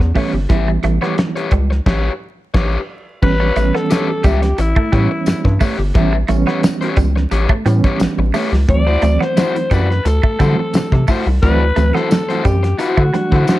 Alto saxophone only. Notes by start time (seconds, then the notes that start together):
3.23 B4
3.76 A4
4.26 G4
4.61 E4
8.70 D5
9.23 C5
9.73 B4
10.07 A4
11.42 B4
11.94 A4
12.44 G4
12.78 F#4